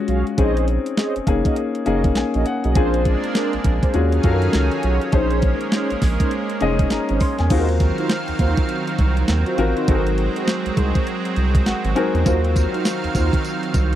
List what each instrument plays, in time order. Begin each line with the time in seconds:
Already playing: grand piano G#3 C#4 F4 F#4
0.08 analog synth bass B1, analog polysynth F#4 G#4 C#5 F5, closed hi-hat
0.27 closed hi-hat
0.37 analog synth bass A#1, grand piano C4 C#4 D#4 G#4, analog polysynth G#4 C5 C#5 D#5, kick, closed hi-hat
0.57 closed hi-hat
0.68 closed hi-hat
0.86 closed hi-hat
0.97 analog polysynth G#4 C5 C#5 D#5, snare, closed hi-hat
1.16 analog synth bass F#1, closed hi-hat
1.27 analog synth bass F#1, grand piano A#3 C#4 D#4 G#4, kick, closed hi-hat
1.45 analog polysynth F#4 G#4 A#4 D#5, kick, closed hi-hat
1.56 closed hi-hat
1.75 closed hi-hat
1.86 analog synth bass F#1, grand piano A#3 C#4 D#4 G#4, analog polysynth F#4 G#4 A#4 D#5, closed hi-hat
2.04 kick, closed hi-hat
2.15 analog synth bass A#1, grand piano G#5, snare, closed hi-hat
2.34 analog synth bass A#1, analog polysynth F#4 G#4 A#4 D#5, closed hi-hat
2.46 grand piano F#5, closed hi-hat
2.64 analog synth bass B1, analog polysynth F#4 G#4 A#4 D#5, closed hi-hat
2.75 analog synth bass A#1, analog synth pad G#3 A#3 D4, grand piano C4 D4 F4 G#4, analog polysynth D4 G#4 A#4 C5, kick, closed hi-hat
2.94 closed hi-hat
3.05 kick, closed hi-hat
3.24 closed hi-hat
3.35 analog polysynth D4 G#4 A#4 C5, snare, closed hi-hat
3.53 analog synth bass A#1, closed hi-hat
3.64 analog synth bass A#1, kick, closed hi-hat
3.83 analog polysynth D4 G#4 A#4 C5, kick, closed hi-hat
3.94 analog synth bass D#2, analog synth pad D#3 F#3 C#4 G#4 F5, grand piano C#4 F4 F#4 G#4, closed hi-hat
4.12 closed hi-hat
4.23 analog synth bass F#2, grand piano C#4 F4 F#4 A4, kick, closed hi-hat
4.31 grand piano A#4
4.42 closed hi-hat
4.53 analog synth bass C#2, snare, closed hi-hat
4.72 closed hi-hat
4.83 analog synth bass B1, analog polysynth F4 F#4 G#4 C#5, closed hi-hat
5.01 closed hi-hat
5.12 analog synth bass A#1, analog synth pad G#3 A#3, grand piano C#4 D#4 G#4 C5, analog polysynth C#4 D#4 G#4 C5, kick, closed hi-hat
5.31 closed hi-hat
5.42 kick, closed hi-hat
5.61 closed hi-hat
5.72 analog polysynth C#4 D#4 G#4 C5, snare, closed hi-hat
5.90 analog synth bass A#1, closed hi-hat
6.02 analog synth bass A#1, kick, snare, open hi-hat
6.20 analog polysynth C#4 D#4 G#4 C5, kick, closed hi-hat
6.31 closed hi-hat
6.50 closed hi-hat
6.61 analog synth bass F1, grand piano C#4 D#4 G#4 D#5, analog polysynth C#4 D#4 G#4 C5, closed hi-hat
6.79 kick, closed hi-hat
6.90 analog synth bass G#1, grand piano A#5, snare, closed hi-hat
7.09 analog synth bass G#1, analog polysynth C#4 D#4 G#4 C5, closed hi-hat
7.20 grand piano C6, kick, open hi-hat
7.38 analog synth bass E2, grand piano G#5, snare, closed hi-hat
7.50 analog synth bass D#2, analog synth pad D#3 F#3 C4 F5, grand piano C4 F4 F#4 G#4, analog polysynth D#4 F4 F#4 C5, kick, closed hi-hat, crash
7.58 grand piano A#4
7.69 closed hi-hat
7.80 kick, closed hi-hat
7.98 analog polysynth D#4 F4 F#4 C5, closed hi-hat
8.09 snare, closed hi-hat
8.28 analog synth bass D#2, closed hi-hat
8.39 analog synth bass D#2, analog polysynth D#4 F4 F#4 C5, kick, closed hi-hat
8.57 kick, closed hi-hat
8.69 closed hi-hat
8.87 closed hi-hat
8.98 analog synth bass C2, kick, closed hi-hat
9.17 closed hi-hat
9.28 analog synth bass D#2, snare, closed hi-hat
9.46 analog polysynth D#4 F4 F#4 C5, closed hi-hat
9.58 analog synth bass A1, grand piano C4 F4 F#4 A#4, closed hi-hat
9.76 analog polysynth D#4 F4 F#4 C5, closed hi-hat
9.88 analog synth bass G#1, analog synth pad G#3, grand piano C4 D#4 F#4 A4, analog polysynth D#4 F#4 G#4 C5, kick, closed hi-hat
9.95 grand piano A#4
10.07 closed hi-hat
10.18 closed hi-hat
10.35 analog polysynth D#4 F#4 G#4 C5, closed hi-hat
10.48 snare, closed hi-hat
10.66 analog synth bass C2, closed hi-hat
10.77 analog synth bass C2, analog polysynth D#4 F#4 G#4 C5, kick, closed hi-hat
10.95 kick, closed hi-hat
11.07 closed hi-hat
11.25 closed hi-hat
11.36 analog synth bass C2, closed hi-hat
11.55 kick, closed hi-hat
11.66 analog synth bass G#1, grand piano F#5, snare, closed hi-hat
11.85 analog synth bass G#1, closed hi-hat
11.95 grand piano C4 D#4 F#4 A#4 G#5, closed hi-hat
12.15 analog synth bass E2, closed hi-hat
12.25 analog synth bass D#2, analog synth pad D#3 F5, grand piano C4 F4 F#4 A#4, analog polysynth D#4 F4 F#4 C5, kick, closed hi-hat, tambourine
12.45 closed hi-hat
12.56 kick, closed hi-hat, tambourine
12.73 analog polysynth D#4 F4 F#4 C5, closed hi-hat
12.85 snare, closed hi-hat, tambourine
13.04 analog synth bass D#2, closed hi-hat
13.15 analog synth bass D#2, analog polysynth D#4 F4 F#4 C5, kick, closed hi-hat, tambourine
13.33 kick, closed hi-hat
13.45 closed hi-hat, tambourine
13.63 closed hi-hat
13.74 analog synth bass C2, kick, closed hi-hat, tambourine